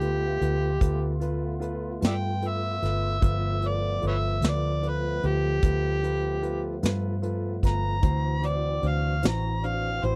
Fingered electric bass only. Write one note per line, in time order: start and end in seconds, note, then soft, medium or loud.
0.00 0.37 D2 medium
0.41 0.78 D2 medium
0.81 1.98 D2 medium
2.02 2.79 G2 medium
2.82 3.19 G1 medium
3.23 3.99 G1 loud
4.03 4.40 G1 medium
4.42 5.19 D2 medium
5.24 5.60 D2 medium
5.63 6.80 D2 medium
6.83 7.60 G2 medium
7.63 8.00 G1 medium
8.03 8.80 D2 medium
8.83 9.20 D2 medium
9.23 10.00 A1 medium
10.03 10.15 A1 medium